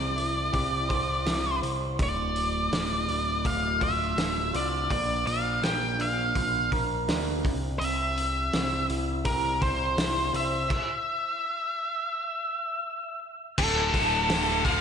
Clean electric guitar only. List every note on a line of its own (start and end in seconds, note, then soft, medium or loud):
0.00 0.90 C3 medium
0.00 1.62 C4 medium
0.00 0.15 E4 medium
0.00 0.53 C5 medium
0.16 1.24 E4 medium
0.52 1.99 G4 medium
0.89 1.61 C5 medium
1.25 1.99 E4 medium
1.62 1.99 C5 medium
1.99 3.81 D2 medium
2.71 4.54 A2 medium
3.08 4.17 D3 medium
3.44 4.90 A3 medium
3.80 4.52 F4 medium
4.18 4.91 D3 medium
4.53 4.90 F4 medium
4.90 6.72 A#2 medium
5.64 7.45 A#3 medium
5.99 7.07 D4 medium
6.35 7.44 F4 medium
6.72 7.45 A#4 medium
7.09 7.45 D4 medium
7.44 7.80 C3 medium
7.81 9.62 C3 medium
8.53 10.34 C4 medium
8.89 9.96 E4 medium
9.25 10.70 G4 medium
9.62 10.33 C5 medium
9.97 10.70 E4 medium
10.34 10.70 C5 medium